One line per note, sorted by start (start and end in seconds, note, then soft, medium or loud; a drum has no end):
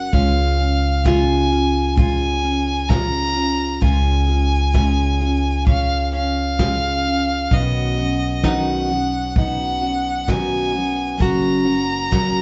0.00 0.12 F#3 soft
0.00 0.12 C#4 soft
0.00 0.13 C#4 medium
0.00 0.13 F#4 medium
0.00 0.12 A#4 medium
0.00 0.14 F#5 loud
0.12 3.78 C#2 medium
0.12 0.58 C#3 medium
0.12 0.59 G#3 medium
0.12 0.59 C#4 medium
0.12 0.58 F4 medium
0.12 0.56 G#4 medium
0.12 1.07 F5 medium
0.12 kick medium
0.57 1.04 C#4 soft
0.57 1.04 F4 medium
0.57 1.04 G#4 medium
1.04 1.51 C#3 medium
1.04 1.51 G#3 medium
1.04 1.51 C#4 medium
1.04 1.51 F4 medium
1.04 1.48 G#4 medium
1.04 1.97 G#5 medium
1.04 kick medium
1.04 snare medium
1.50 1.95 C#4 soft
1.50 1.96 F4 soft
1.50 1.97 G#4 medium
1.96 2.43 G#3 medium
1.96 2.43 C#4 medium
1.96 2.42 F4 medium
1.96 2.41 G#4 medium
1.96 2.91 G#5 loud
1.96 kick loud
2.42 2.88 C#4 soft
2.42 2.89 F4 medium
2.42 2.89 G#4 medium
2.88 3.35 C#3 medium
2.88 3.35 G#3 medium
2.88 3.36 C#4 medium
2.88 3.35 F4 medium
2.88 3.33 G#4 medium
2.88 3.83 A#5 loud
2.88 kick medium
2.88 snare loud
3.34 3.81 C#4 soft
3.34 3.81 F4 medium
3.34 3.81 G#4 medium
3.80 7.47 C#2 medium
3.80 4.27 C#3 medium
3.80 4.28 G#3 medium
3.80 4.28 C#4 medium
3.80 4.27 F4 medium
3.80 4.25 G#4 medium
3.80 5.66 G#5 medium
3.80 kick medium
4.27 4.73 C#4 soft
4.27 4.74 F4 soft
4.27 4.74 G#4 medium
4.73 5.20 C#3 medium
4.73 5.20 G#3 medium
4.73 5.21 C#4 medium
4.73 5.20 F4 medium
4.73 5.18 G#4 medium
4.73 kick medium
4.73 snare medium
5.19 5.66 C#4 soft
5.19 5.66 F4 medium
5.19 5.66 G#4 medium
5.66 6.12 G#3 medium
5.66 6.13 C#4 medium
5.66 6.13 F4 medium
5.66 6.11 G#4 medium
5.66 6.10 F5 medium
5.66 kick loud
6.12 6.59 C#4 soft
6.12 6.60 F4 soft
6.12 6.59 G#4 medium
6.12 7.55 F5 loud
6.59 7.05 C#3 medium
6.59 7.05 G#3 medium
6.59 7.06 C#4 medium
6.59 7.05 F4 medium
6.59 7.04 G#4 medium
6.59 kick medium
6.59 snare loud
7.05 7.51 C#4 soft
7.05 7.52 F4 soft
7.05 7.51 G#4 medium
7.51 11.16 B1 medium
7.51 7.97 B2 medium
7.51 7.97 D#3 medium
7.51 7.98 F#3 medium
7.51 7.98 B3 medium
7.51 7.97 C#4 medium
7.51 7.96 F#4 medium
7.51 8.47 D#5 medium
7.51 kick medium
7.97 8.43 F#3 soft
7.97 8.43 B3 soft
7.97 8.44 C#4 soft
7.97 8.43 F#4 medium
8.43 8.89 B2 medium
8.43 8.90 D#3 medium
8.43 8.90 F#3 medium
8.43 8.89 B3 medium
8.43 8.89 C#4 medium
8.43 9.36 D#4 medium
8.43 8.88 F#4 medium
8.43 9.36 F#5 medium
8.43 kick medium
8.43 snare medium
8.89 9.34 F#3 soft
8.89 9.35 B3 soft
8.89 9.36 C#4 medium
8.89 9.35 F#4 medium
9.35 9.81 F#3 medium
9.35 9.82 B3 medium
9.35 9.81 C#4 medium
9.35 10.25 D#4 medium
9.35 9.80 F#4 medium
9.35 10.31 F#5 medium
9.35 kick medium
9.81 10.26 F#3 soft
9.81 10.26 B3 soft
9.81 10.27 C#4 soft
9.81 10.27 F#4 soft
10.26 10.73 B2 medium
10.26 10.74 D#3 medium
10.26 10.74 F#3 medium
10.26 10.73 B3 medium
10.26 10.72 C#4 medium
10.26 11.22 D#4 medium
10.26 10.71 F#4 medium
10.26 11.22 G#5 loud
10.26 kick medium
10.26 snare medium
10.72 11.17 F#3 soft
10.72 11.18 B3 soft
10.72 11.18 C#4 medium
10.72 11.18 F#4 soft
11.17 12.42 F#1 medium
11.17 11.65 F#2 medium
11.17 11.65 C#3 medium
11.17 11.65 F#3 medium
11.17 11.65 A#3 medium
11.17 11.64 C#4 medium
11.17 11.63 F#4 medium
11.17 12.42 A#5 loud
11.17 kick medium
11.65 12.10 F#3 soft
11.65 12.11 A#3 soft
11.65 12.11 C#4 medium
11.65 12.11 F#4 medium
12.11 12.42 F#2 medium
12.11 12.42 C#3 medium
12.11 12.42 F#3 medium
12.11 12.42 A#3 medium
12.11 12.42 C#4 medium
12.11 12.42 F#4 medium
12.11 kick medium
12.11 snare medium